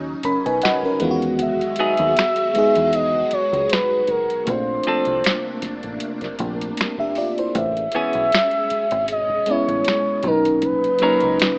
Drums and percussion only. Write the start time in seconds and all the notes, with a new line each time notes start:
0.23 kick, closed hi-hat
0.46 closed hi-hat
0.62 finger snap, snare, closed hi-hat
0.83 kick
1.00 closed hi-hat
1.22 closed hi-hat
1.39 kick, closed hi-hat
1.61 closed hi-hat
1.76 closed hi-hat
1.97 closed hi-hat
2.17 finger snap, snare, closed hi-hat
2.36 closed hi-hat
2.55 closed hi-hat
2.75 closed hi-hat
2.93 closed hi-hat
3.14 kick
3.31 closed hi-hat
3.53 kick, closed hi-hat
3.69 finger snap, snare, closed hi-hat
4.07 kick, closed hi-hat
4.30 closed hi-hat
4.47 kick, closed hi-hat
4.83 closed hi-hat
5.05 closed hi-hat
5.24 finger snap, snare, closed hi-hat
5.62 kick, snare, closed hi-hat
5.83 closed hi-hat
6.00 closed hi-hat
6.21 kick, snare, closed hi-hat
6.39 kick, closed hi-hat
6.61 closed hi-hat
6.77 finger snap, snare, closed hi-hat
6.98 kick
7.15 open hi-hat
7.38 closed hi-hat
7.55 kick, closed hi-hat
7.77 closed hi-hat
7.92 closed hi-hat
8.13 closed hi-hat
8.32 finger snap, snare, closed hi-hat
8.51 closed hi-hat
8.70 closed hi-hat
8.91 closed hi-hat
9.08 closed hi-hat
9.29 kick
9.46 closed hi-hat
9.68 kick, closed hi-hat
9.84 finger snap, snare, closed hi-hat
10.23 kick, closed hi-hat
10.45 closed hi-hat
10.62 kick, closed hi-hat
10.84 closed hi-hat
10.99 closed hi-hat
11.20 closed hi-hat
11.39 finger snap, snare, closed hi-hat